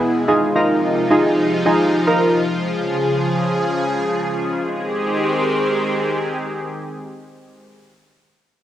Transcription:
0.00 0.26 B2 medium
0.00 0.26 E3 medium
0.00 4.65 G#3 medium
0.00 0.22 B3 medium
0.00 0.22 E4 medium
0.00 0.26 E4 medium
0.00 0.22 G#4 medium
0.00 0.26 G#4 medium
0.00 downlifter medium
0.28 2.46 C3 medium
0.28 4.65 F3 medium
0.28 0.51 D#4 medium
0.28 2.46 D#4 medium
0.28 0.52 F4 medium
0.28 4.65 F4 medium
0.28 0.52 G#4 medium
0.55 1.02 D#4 medium
0.55 1.02 F4 medium
0.55 1.03 A#4 medium
1.10 1.57 D#4 medium
1.10 1.57 F4 medium
1.10 1.58 G#4 medium
1.66 2.01 D#4 medium
1.66 2.01 F4 medium
1.66 2.01 G#4 loud
2.07 2.42 D#4 medium
2.07 2.42 F4 medium
2.07 2.42 A#4 medium
2.48 4.66 C#3 medium
2.48 4.66 G#4 medium
4.69 7.65 D#3 medium
4.69 7.65 G#3 medium
4.69 7.65 C4 medium
4.69 7.65 G4 medium
4.69 7.65 G#4 medium

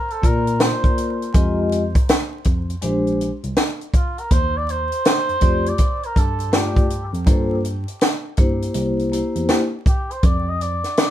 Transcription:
0.00 0.13 A#4 medium
0.10 0.27 A4 medium
0.10 closed hi-hat soft
0.22 0.71 A#2 medium
0.22 1.28 A#3 medium
0.22 1.29 F4 medium
0.22 1.29 A#4 medium
0.22 0.64 A#4 medium
0.22 1.30 D5 medium
0.22 kick medium
0.22 closed hi-hat medium
0.47 closed hi-hat soft
0.60 1.22 C5 medium
0.60 snare loud
0.60 closed hi-hat medium
0.84 kick medium
0.84 closed hi-hat soft
0.98 closed hi-hat medium
1.22 closed hi-hat soft
1.34 1.92 F2 medium
1.34 1.81 G#3 medium
1.34 1.81 F4 medium
1.34 1.81 G4 medium
1.34 1.82 D#5 medium
1.34 kick loud
1.34 closed hi-hat medium
1.72 closed hi-hat medium
1.95 kick loud
1.95 closed hi-hat medium
2.09 snare loud
2.09 closed hi-hat loud
2.44 2.74 F2 medium
2.44 kick medium
2.44 closed hi-hat medium
2.70 closed hi-hat soft
2.82 3.30 A#1 loud
2.82 3.29 G#3 medium
2.82 3.29 D4 medium
2.82 3.29 G4 medium
2.82 3.30 C5 medium
2.82 closed hi-hat medium
3.07 closed hi-hat soft
3.21 closed hi-hat medium
3.44 3.54 C2 medium
3.44 closed hi-hat soft
3.56 snare loud
3.56 closed hi-hat medium
3.81 closed hi-hat soft
3.94 4.21 F4 medium
3.94 kick medium
3.94 closed hi-hat medium
4.18 4.34 A#4 medium
4.18 closed hi-hat soft
4.31 4.89 D#2 medium
4.31 4.59 C5 loud
4.31 kick medium
4.31 closed hi-hat medium
4.57 4.72 D5 medium
4.69 5.70 C5 loud
4.69 closed hi-hat medium
4.92 closed hi-hat medium
5.05 snare loud
5.05 closed hi-hat medium
5.29 5.34 F2 soft
5.29 closed hi-hat soft
5.40 5.71 F2 medium
5.40 5.70 A3 medium
5.40 5.71 F4 medium
5.40 5.71 G4 medium
5.40 5.71 D5 medium
5.40 kick medium
5.40 closed hi-hat medium
5.66 6.07 D5 medium
5.66 closed hi-hat soft
5.78 kick medium
5.78 closed hi-hat medium
6.03 6.20 A#4 medium
6.03 closed hi-hat soft
6.16 7.10 G2 medium
6.16 6.57 A4 medium
6.16 kick medium
6.16 closed hi-hat medium
6.40 closed hi-hat soft
6.52 6.82 A3 medium
6.52 6.82 F4 medium
6.52 6.82 G4 medium
6.52 7.15 G4 medium
6.52 6.83 D5 medium
6.52 snare medium
6.52 closed hi-hat medium
6.76 kick medium
6.76 closed hi-hat soft
6.90 closed hi-hat medium
7.14 7.27 F2 medium
7.14 closed hi-hat soft
7.26 7.85 G2 loud
7.26 7.56 A#3 medium
7.26 7.56 F4 medium
7.26 7.56 A4 medium
7.26 7.57 C5 medium
7.26 kick loud
7.26 closed hi-hat medium
7.65 closed hi-hat medium
7.88 closed hi-hat medium
8.01 snare loud
8.01 closed hi-hat medium
8.37 8.67 G2 medium
8.37 9.11 A#3 medium
8.37 9.12 E4 medium
8.37 9.12 G4 medium
8.37 9.13 C5 medium
8.37 kick medium
8.37 closed hi-hat medium
8.62 closed hi-hat soft
8.74 9.22 C2 loud
8.74 closed hi-hat medium
8.99 closed hi-hat soft
9.12 9.59 A#3 medium
9.12 9.59 E4 medium
9.12 9.59 G4 medium
9.12 9.60 C5 medium
9.12 closed hi-hat medium
9.36 9.46 E2 medium
9.36 closed hi-hat soft
9.49 snare medium
9.49 closed hi-hat medium
9.86 10.13 G4 medium
9.86 kick medium
9.86 closed hi-hat medium
10.11 10.27 C5 medium
10.11 closed hi-hat soft
10.23 10.81 F2 medium
10.23 10.50 D5 medium
10.23 kick loud
10.23 closed hi-hat medium
10.49 10.64 D#5 medium
10.61 11.10 D5 medium
10.61 closed hi-hat medium
10.84 snare soft
10.84 closed hi-hat medium
10.97 snare loud
10.97 closed hi-hat loud

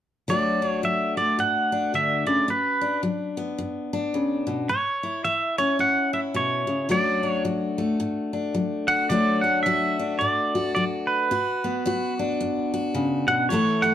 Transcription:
0.28 0.79 D3 medium
0.28 0.83 F#3 medium
0.28 1.16 A3 medium
0.28 0.62 D4 soft
0.28 4.71 F#4 medium
0.28 0.67 D5 medium
0.62 1.71 D4 soft
0.67 0.80 C#5 medium
0.83 1.34 F#3 medium
0.83 1.15 E5 medium
1.17 2.49 A3 soft
1.17 1.40 D5 medium
1.39 1.89 A2 medium
1.39 1.95 F#5 medium
1.72 2.46 D4 soft
1.94 2.26 D3 soft
1.94 2.29 E5 medium
2.27 2.48 C#3 medium
2.27 2.49 D5 medium
2.48 2.99 B2 medium
2.48 3.01 B4 medium
2.81 3.92 D4 soft
3.03 3.54 F#3 medium
3.37 4.67 B3 medium
3.58 4.10 F#2 medium
3.93 4.67 D4 medium
4.14 4.46 C#3 medium
4.47 4.69 B2 medium
4.69 5.20 A2 medium
4.69 5.24 C#5 medium
5.03 6.12 E4 soft
5.25 5.75 E3 medium
5.25 5.58 E5 medium
5.58 6.88 C#4 medium
5.58 5.81 C#5 medium
5.79 6.30 A2 medium
5.79 6.11 F#5 medium
6.13 6.87 E4 soft
6.13 6.20 E5 medium
6.34 6.67 B2 medium
6.34 6.91 C#5 medium
6.67 6.88 C#3 medium
6.89 7.40 D3 medium
6.89 7.44 F#3 medium
6.89 7.77 A3 soft
6.89 7.22 D4 medium
6.89 8.87 F#4 medium
6.89 7.28 D5 medium
7.23 8.32 D4 soft
7.28 7.42 C#5 medium
7.45 7.96 F#3 medium
7.78 9.10 A3 medium
8.00 8.51 A2 medium
8.33 9.07 D4 soft
8.54 9.05 F#3 medium
8.88 9.11 F#4 medium
8.88 9.11 F#5 medium
9.09 9.61 D3 medium
9.09 9.65 F#3 soft
9.09 9.42 A3 medium
9.09 9.99 D4 medium
9.09 9.66 F#4 medium
9.09 9.41 D5 loud
9.41 11.30 A3 soft
9.41 9.62 F#5 medium
9.63 10.16 F#3 medium
9.63 10.54 F#4 medium
9.63 10.15 E5 medium
9.99 11.28 D4 soft
10.19 10.71 A2 medium
10.19 10.74 D5 medium
10.55 11.30 F#4 medium
10.75 11.26 F#3 medium
10.75 10.84 D5 medium
11.07 12.14 B4 medium
11.31 11.81 B2 medium
11.31 11.86 F#4 soft
11.64 13.48 B3 soft
11.86 12.36 F#3 medium
11.86 12.72 F#4 medium
12.19 13.48 D4 medium
12.41 12.91 F#2 medium
12.74 13.50 F#4 medium
12.94 13.27 C#3 medium
13.28 13.50 B2 medium
13.28 13.48 F#5 medium
13.49 13.94 A2 medium
13.49 13.94 E3 medium
13.49 13.83 A3 medium
13.49 13.94 E4 medium
13.49 13.84 C#5 medium
13.53 13.94 A4 medium
13.82 13.94 A3 soft
13.82 13.94 F#5 medium

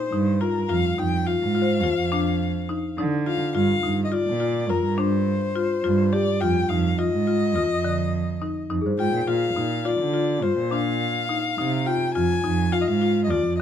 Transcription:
0.00 0.42 C5 medium
0.00 0.60 G5 medium
0.12 0.55 G2 medium
0.12 0.29 D#4 medium
0.40 0.57 F4 medium
0.40 0.70 A#4 medium
0.69 0.91 F2 medium
0.69 0.86 F4 medium
0.69 1.00 F5 loud
0.98 1.30 F2 medium
0.98 1.14 D#4 medium
0.98 1.28 G5 medium
1.26 1.43 F4 medium
1.26 2.98 F5 medium
1.40 1.85 G#2 medium
1.55 1.71 F4 medium
1.62 3.80 C5 medium
1.83 1.94 D#2 medium
1.83 2.00 F4 medium
1.98 2.73 F2 medium
2.12 2.45 D4 medium
2.69 2.86 D#4 medium
2.98 3.41 D3 medium
2.98 3.14 D#4 medium
3.26 3.43 F4 medium
3.26 3.54 F5 medium
3.55 3.77 G2 medium
3.55 3.71 F4 medium
3.55 4.02 F5 medium
3.83 4.16 G2 medium
3.83 4.00 D#4 medium
4.05 4.14 D#5 medium
4.12 4.28 F4 medium
4.12 4.71 D5 medium
4.27 4.72 A#2 medium
4.40 4.57 F4 medium
4.69 4.81 F2 medium
4.69 4.86 F4 medium
4.69 5.00 A#4 medium
4.69 6.66 A#4 medium
4.84 5.59 G2 medium
4.98 5.31 D4 medium
4.98 6.14 C5 medium
5.56 5.72 F4 medium
5.84 6.27 G2 medium
5.84 6.00 F4 medium
6.12 6.29 G4 medium
6.12 6.42 D5 loud
6.40 6.63 F2 medium
6.40 6.58 F4 medium
6.40 6.70 G5 loud
6.69 7.02 F2 medium
6.69 6.86 D#4 medium
6.69 6.99 F5 medium
6.98 7.15 F4 medium
6.98 8.70 D#5 medium
7.13 7.58 G#2 medium
7.27 7.44 F4 medium
7.55 7.67 D#2 medium
7.55 7.72 F4 medium
7.71 8.46 F2 medium
7.84 8.17 D3 medium
8.42 8.58 D#4 medium
8.70 8.83 F2 medium
8.70 8.87 D#4 medium
8.81 8.98 G2 medium
8.81 9.53 G#4 medium
8.86 9.56 C5 soft
8.98 9.12 G#2 medium
8.98 9.15 F4 medium
8.98 9.21 G5 medium
9.14 9.27 A#2 medium
9.21 9.29 G5 medium
9.27 9.50 A#2 medium
9.27 9.44 F4 medium
9.27 9.87 F5 medium
9.56 9.89 A#2 medium
9.56 9.73 D#4 medium
9.85 10.02 F4 medium
9.85 10.44 D5 medium
10.00 10.45 D3 medium
10.14 10.30 F4 medium
10.42 10.54 G2 medium
10.42 10.59 F4 medium
10.42 10.73 C5 medium
10.58 11.33 A#2 medium
10.71 11.04 D4 medium
10.71 11.88 F5 loud
11.29 11.46 D#4 medium
11.58 12.01 C3 medium
11.58 11.75 D#4 medium
11.86 12.03 F4 medium
11.86 12.14 G5 loud
12.14 12.37 F2 medium
12.14 12.32 F4 medium
12.14 12.74 G#5 loud
12.44 12.77 F2 medium
12.44 12.60 D#4 medium
12.72 12.89 F4 medium
12.72 12.83 F5 medium
12.81 12.89 D#5 medium
12.87 13.32 G#2 medium
12.87 13.23 F5 medium
13.02 13.18 F4 medium
13.24 13.31 D#5 medium
13.30 13.42 D#2 medium
13.30 13.47 F4 medium
13.30 13.57 D5 medium
13.46 13.62 F2 medium
13.58 13.62 D#5 loud

